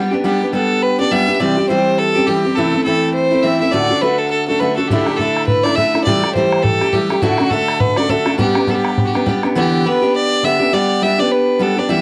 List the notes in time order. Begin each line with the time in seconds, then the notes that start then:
Already playing: G3 B3 D4 G4
0.11 B3 D4 G4
0.24 G3 B3 D4 G4
0.41 B3 D4 G4
0.53 G3 B3 D4 G4 A4
0.82 B4
0.99 B3 D4 G4 D5
1.11 G3 B3 D4 G4 E5
1.27 B3 D4 G4
1.35 E5
1.40 C3 E3 G3 C4 G4 D5
1.57 G3 C4 G4
1.69 E3 G3 C4 G4 C5
1.98 A4
2.15 G3 C4 G4
2.27 E3 G3 C4 G4
2.45 G3 C4 G4
2.55 C3 E3 A3 C4 E4 A4
2.74 A3 C4 E4
2.84 E3 C4 A4
2.88 A3 E4
3.14 C5
3.31 A3 C4 E4
3.43 E3 A3 C4 E4 E5
3.60 A3 C4 E4 E5
3.72 D2 A2 D3 A3 D4 F#4 D5
3.90 D3 A3 D4 F#4
4.01 D3 A3 D4 F#4 B4
4.18 A4
4.30 A4
4.48 D3 A3 D4 F#4 A4
4.59 D3 A3 D4 F#4 B4
4.76 D3 A3 D4 F#4 A4
4.88 D2 A2 D3 G4, bodhran
4.92 A3 D4 E4
4.99 bodhran
5.06 D3 A3 D4 E4, bodhran
5.16 D3 A3 A4, bodhran
5.21 D4 E4
5.37 bodhran
5.46 B4, bodhran
5.63 A3 D4 E4 D5, bodhran
5.68 D3
5.76 D3 A3 D4 E4 E5, bodhran
5.94 D3 A3 D4 E4, bodhran
6.04 C3 E3 G3 A3 G4 D5, bodhran
6.16 bodhran
6.23 G3 A3 G4, bodhran
6.35 E3 G3 A3 G4 C5, bodhran
6.44 bodhran
6.52 bodhran
6.63 A4, bodhran
6.81 G3 A3 G4, bodhran
6.93 E3 G3 A3 G4, bodhran
7.10 G3 A3 G4, bodhran
7.22 D2 A2 D3 A3 D4 F#4, bodhran
7.30 bodhran
7.38 D3 A3 D4 F#4, bodhran
7.50 D3 A3 D4 F#4 A4, bodhran
7.60 bodhran
7.68 bodhran
7.80 B4, bodhran
7.96 D3 A3 D4 F#4 D5, bodhran
8.09 D3 A3 D4 F#4 A4, bodhran
8.25 D3 A3 D4 F#4, bodhran
8.38 G3 B3 D4 G4, bodhran
8.47 bodhran
8.55 B3 D4 G4, bodhran
8.68 G3 B3 D4 G4 A4, bodhran
8.75 G4, bodhran
8.85 bodhran
8.98 bodhran
9.05 F#4 G4
9.14 B3 D4 G4, bodhran
9.26 G3 B3 D4 G4, bodhran
9.43 B3 D4 G4, bodhran
9.55 D3 E3 B3 D4 G4
9.85 D3 B3 D4 G4 B4
10.02 B3 D4 G4
10.15 D5
10.43 D3 B3 D4 G4 E5
10.59 B3 D4 G4
10.73 G3 B3 D4 G4 D5
11.01 G3 B3 D4 G4 E5
11.18 B3 D4 G4 D5
11.32 B4
11.59 G3 B3 D4 G4 A4
11.77 B3 D4 G4 D5
11.89 E3 G3 B3 G4 E5